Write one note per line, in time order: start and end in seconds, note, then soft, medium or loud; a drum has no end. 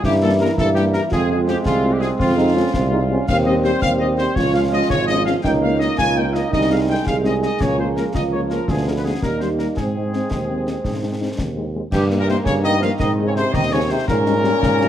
0.04 0.49 G2 medium
0.04 1.13 E3 medium
0.04 1.12 A#3 medium
0.04 0.55 E4 medium
0.04 0.13 G4 loud
0.04 concert bass drum medium
0.04 snare medium
0.22 0.29 G3 medium
0.22 0.29 A#3 medium
0.22 0.29 E4 medium
0.22 0.30 A4 medium
0.41 0.47 G3 medium
0.41 0.47 A#3 medium
0.41 0.48 E4 medium
0.41 0.49 A#4 medium
0.58 0.98 G2 medium
0.58 1.08 E4 medium
0.58 0.67 A4 loud
0.58 concert bass drum medium
0.58 snare medium
0.75 0.83 G3 medium
0.75 0.83 A#3 medium
0.75 0.83 E4 medium
0.75 0.83 G4 loud
0.75 snare medium
0.93 1.01 G3 medium
0.93 1.01 A#3 medium
0.93 1.01 E4 medium
0.93 1.01 A#4 medium
0.93 snare soft
1.11 1.57 F2 medium
1.11 3.12 G#3 medium
1.11 3.12 C4 medium
1.11 1.62 F4 medium
1.11 1.29 G#4 medium
1.11 concert bass drum medium
1.11 snare medium
1.30 1.37 G#3 medium
1.30 1.37 C4 medium
1.30 1.37 F4 medium
1.30 1.38 G#4 medium
1.48 1.54 G#3 medium
1.48 1.55 C4 medium
1.48 1.55 F4 medium
1.48 1.56 G4 loud
1.48 snare medium
1.65 2.11 C2 medium
1.65 1.91 F4 medium
1.65 1.98 G#4 medium
1.65 concert bass drum medium
1.65 snare medium
1.85 1.91 G#3 medium
1.85 1.91 C4 medium
1.85 1.91 F4 medium
1.92 2.02 G4 medium
2.00 2.08 G#3 medium
2.00 2.08 C4 medium
2.00 2.08 F4 medium
2.00 2.09 G#4 medium
2.00 snare medium
2.19 2.65 F2 medium
2.19 2.36 C4 medium
2.19 3.24 F4 loud
2.19 concert bass drum medium
2.19 snare medium
2.37 2.44 G#3 medium
2.37 2.44 C4 medium
2.37 2.56 D#4 medium
2.37 2.44 F4 medium
2.55 2.62 G#3 medium
2.55 2.62 C4 medium
2.55 2.74 C#4 medium
2.55 2.62 F4 medium
2.74 3.19 C2 medium
2.74 2.82 C4 medium
2.74 concert bass drum medium
2.74 snare medium
2.91 2.98 G#3 medium
2.91 2.98 C4 medium
2.91 2.99 D#4 medium
2.91 2.98 F4 medium
3.10 3.16 G#3 medium
3.10 3.16 C4 medium
3.10 3.27 C#4 medium
3.10 3.17 F4 medium
3.28 3.73 D#2 medium
3.28 4.37 G3 medium
3.28 4.33 C4 medium
3.28 3.36 F5 loud
3.28 concert bass drum medium
3.28 snare medium
3.28 crash soft
3.45 3.53 G3 medium
3.45 3.52 C4 medium
3.45 3.53 G4 medium
3.45 3.54 D#5 medium
3.64 3.70 G3 medium
3.64 3.70 C4 medium
3.64 3.70 G4 medium
3.64 3.81 C5 loud
3.64 snare medium
3.82 4.27 D#2 medium
3.82 3.90 F5 loud
3.82 concert bass drum medium
3.82 snare medium
3.99 4.07 G3 medium
3.99 4.07 C4 medium
3.99 4.07 G4 medium
3.99 4.08 D#5 medium
4.18 4.25 G3 medium
4.18 4.24 C4 medium
4.18 4.25 G4 medium
4.18 4.35 C5 medium
4.18 snare medium
4.35 4.82 C#2 medium
4.35 5.45 F3 medium
4.35 5.45 G#3 medium
4.35 5.41 F4 medium
4.35 4.54 C#5 loud
4.35 concert bass drum medium
4.35 snare medium
4.54 4.61 G#3 medium
4.54 4.61 C#4 medium
4.54 4.61 F4 medium
4.54 4.62 F5 medium
4.72 4.79 G#3 medium
4.72 4.79 C#4 medium
4.72 4.79 F4 medium
4.72 4.89 D#5 loud
4.90 5.35 G#1 medium
4.90 5.07 C#5 loud
4.90 concert bass drum medium
4.90 snare medium
5.07 5.15 G#3 medium
5.07 5.15 C#4 medium
5.07 5.16 F4 medium
5.07 5.24 D#5 loud
5.07 snare medium
5.25 5.33 G#3 medium
5.25 5.33 C#4 medium
5.25 5.33 F4 medium
5.25 5.34 F5 loud
5.25 snare medium
5.43 5.89 C#2 medium
5.43 7.56 D#3 medium
5.43 6.49 A#3 medium
5.43 5.94 D#4 medium
5.43 5.51 G5 loud
5.43 concert bass drum medium
5.43 snare medium
5.61 5.69 A#3 medium
5.61 5.69 D#4 medium
5.61 5.79 F5 medium
5.79 5.87 A#3 medium
5.79 5.87 D#4 medium
5.79 5.97 D#5 medium
5.79 snare medium
5.97 6.43 C#2 medium
5.97 6.49 F4 medium
5.97 6.15 G#5 loud
5.97 concert bass drum medium
5.97 snare medium
6.15 6.22 A#3 medium
6.15 6.22 D#4 medium
6.15 6.35 G5 medium
6.33 6.40 A#3 medium
6.33 6.40 D#4 medium
6.33 6.51 D#5 medium
6.33 snare medium
6.51 6.97 C2 medium
6.51 7.61 G#3 medium
6.51 7.02 D#4 medium
6.51 6.69 D#5 medium
6.51 concert bass drum medium
6.51 snare medium
6.70 6.77 G#3 medium
6.70 6.77 C4 medium
6.70 6.77 D#4 medium
6.70 6.79 F5 medium
6.87 6.94 G#3 medium
6.87 6.94 C4 medium
6.87 6.94 D#4 medium
6.87 7.06 G5 medium
7.06 7.46 C2 medium
7.06 8.11 G#4 medium
7.06 7.15 F5 loud
7.06 concert bass drum medium
7.06 snare medium
7.23 7.30 G#3 medium
7.23 7.30 C4 medium
7.23 7.30 D#4 medium
7.23 7.33 D#5 medium
7.23 snare soft
7.41 7.48 G#3 medium
7.41 7.49 C4 medium
7.41 7.48 D#4 medium
7.41 7.59 D#5 medium
7.41 snare medium
7.60 8.05 C#2 medium
7.60 9.23 F3 medium
7.60 8.65 A#3 medium
7.60 7.79 C#5 medium
7.60 concert bass drum medium
7.60 snare medium
7.60 crash soft
7.78 7.85 G#3 medium
7.78 7.85 A#3 medium
7.78 7.85 F4 medium
7.78 7.87 C5 medium
7.97 8.04 G#3 medium
7.97 8.04 A#3 medium
7.97 8.04 F4 medium
7.97 8.05 A#4 medium
7.97 snare medium
8.14 8.59 C#2 medium
8.14 8.91 F4 medium
8.14 8.22 D#5 medium
8.14 concert bass drum medium
8.14 snare medium
8.32 8.40 G#3 medium
8.32 8.40 A#3 soft
8.32 8.40 F4 medium
8.32 8.40 C#5 medium
8.50 8.57 G#3 medium
8.50 8.57 A#3 soft
8.50 8.57 F4 soft
8.50 8.67 A#4 medium
8.50 snare medium
8.68 9.13 D2 medium
8.68 9.23 B3 medium
8.68 8.87 G#4 medium
8.68 concert bass drum medium
8.68 snare medium
8.87 8.93 G#3 medium
8.87 8.93 B3 medium
8.87 8.94 F4 medium
8.87 8.91 A#4 medium
8.97 9.01 B4 medium
9.04 9.11 G#3 medium
9.04 9.11 B3 medium
9.04 9.11 F4 medium
9.04 9.21 G#4 medium
9.22 9.68 D#2 medium
9.22 9.77 G3 soft
9.22 9.77 A#3 medium
9.22 9.79 D#4 medium
9.22 9.39 A#4 medium
9.22 concert bass drum medium
9.22 snare medium
9.40 9.47 G3 soft
9.40 9.47 A#3 soft
9.40 9.47 D#4 soft
9.40 9.48 C5 medium
9.40 snare soft
9.58 9.66 G3 soft
9.58 9.66 A#3 soft
9.58 9.66 D#4 soft
9.58 9.66 A#4 medium
9.58 snare medium
9.76 10.22 G#2 medium
9.76 11.71 G#3 medium
9.76 11.66 C4 medium
9.76 11.75 C4 medium
9.76 11.34 G#4 medium
9.76 concert bass drum medium
9.76 snare medium
9.95 10.02 G#3 medium
9.95 10.02 C4 soft
9.95 10.02 D#4 medium
10.13 10.20 G#3 soft
10.13 10.20 C4 soft
10.13 10.20 D#4 soft
10.13 snare soft
10.31 10.76 D#2 medium
10.31 concert bass drum medium
10.31 snare medium
10.50 10.56 G#3 soft
10.50 10.56 C4 soft
10.50 10.56 D#4 soft
10.67 10.74 G#3 soft
10.67 10.74 C4 soft
10.67 10.74 D#4 soft
10.67 snare medium
10.84 11.30 G#2 medium
10.84 concert bass drum medium
10.84 snare medium
11.03 11.10 G#3 soft
11.03 11.10 C4 medium
11.03 11.10 D#4 soft
11.21 11.28 G#3 soft
11.21 11.28 C4 soft
11.21 11.28 D#4 soft
11.38 11.83 D#2 medium
11.38 concert bass drum medium
11.38 snare medium
11.57 11.64 G#3 soft
11.57 11.64 C4 soft
11.57 11.63 D#4 soft
11.75 11.81 G#3 soft
11.75 11.81 C4 soft
11.75 11.81 D#4 soft
11.92 12.04 G2 medium
11.92 12.37 G2 medium
11.92 14.05 D#3 medium
11.92 12.97 A#3 medium
11.92 12.04 G4 medium
11.92 concert bass drum medium
11.92 snare medium
11.92 crash medium
12.10 12.17 A#3 medium
12.10 12.17 D#4 medium
12.10 snare medium
12.18 12.26 A#2 medium
12.18 12.28 A#4 medium
12.27 12.35 C3 medium
12.27 12.36 A#3 medium
12.27 12.36 D#4 medium
12.27 12.37 C5 loud
12.27 snare medium
12.44 12.91 G2 medium
12.44 12.62 C#3 medium
12.44 12.54 C#5 loud
12.44 concert bass drum medium
12.44 snare medium
12.63 12.79 D#3 medium
12.63 12.72 A#3 medium
12.63 12.72 D#4 medium
12.63 12.81 D#5 loud
12.63 snare medium
12.80 12.89 F3 medium
12.80 12.89 A#3 medium
12.80 12.89 D#4 medium
12.80 12.90 F5 loud
12.80 snare medium
12.99 13.45 G#2 medium
12.99 13.11 D#3 medium
12.99 14.08 C4 medium
12.99 13.11 D#5 medium
12.99 concert bass drum medium
12.99 snare medium
13.19 13.25 G#3 medium
13.19 13.25 C4 medium
13.19 13.26 D#4 medium
13.26 13.34 C#3 medium
13.26 13.31 C#5 medium
13.35 13.52 C3 medium
13.35 13.43 G#3 medium
13.35 13.43 C4 medium
13.35 13.42 D#4 medium
13.35 13.53 C5 loud
13.35 snare medium
13.53 13.95 D#2 medium
13.53 13.62 D#3 medium
13.53 13.72 D#5 loud
13.53 concert bass drum medium
13.53 snare medium
13.72 13.80 C#3 medium
13.72 13.79 G#3 medium
13.72 13.79 C4 medium
13.72 13.79 D#4 medium
13.72 13.90 C#5 loud
13.90 14.07 C3 medium
13.90 13.97 G#3 medium
13.90 13.97 C4 medium
13.90 13.97 D#4 medium
13.90 14.08 C5 loud
14.08 14.53 G#2 medium
14.08 14.88 A#2 medium
14.08 14.88 D#3 medium
14.08 14.88 C#4 medium
14.08 14.88 A#4 loud
14.08 concert bass drum medium
14.08 snare medium
14.26 14.33 G3 medium
14.26 14.33 C#4 medium
14.26 14.33 D#4 medium
14.26 snare medium
14.44 14.51 G3 medium
14.44 14.51 C#4 medium
14.44 14.51 D#4 medium
14.44 snare medium
14.62 14.88 G#2 medium
14.62 concert bass drum medium
14.62 snare medium
14.81 14.87 G3 medium
14.81 14.87 C#4 medium
14.81 14.87 D#4 medium
14.81 snare soft